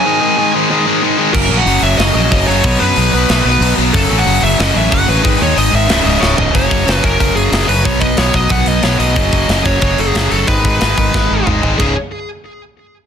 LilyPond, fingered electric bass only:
\new Staff \with { instrumentName = "Fingered electric bass" } { \clef bass \time 4/4 \key fis \dorian \tempo 4 = 184 r1 | fis,,8 ais,,8 fis,,8 fis,,8 fis,,8 ais,,8 fis,,8 fis,,8 | b,,8 fis,8 b,,8 b,,8 b,,8 b,,8 b,,8 b,,8 | fis,,8 a,,8 fis,,8 fis,,8 fis,,8 a,,8 fis,,8 a,,8 |
gis,,8 dis,8 gis,,8 gis,,8 cis,,8 cis,,8 cis,,8 cis,,8 | fis,,8 fis,,8 fis,,8 fis,,8 fis,,8 fis,,8 fis,,8 fis,,8 | b,,4 b,,8 b,,8 b,,8 b,,8 b,,8 b,,8 | fis,,8 fis,,8 fis,,8 fis,,8 fis,,8 fis,,8 fis,,8 fis,,8 |
gis,,4 gis,,8 gis,,8 gis,,8 gis,,8 gis,,8 gis,,8 | cis,,8 r2. r8 | }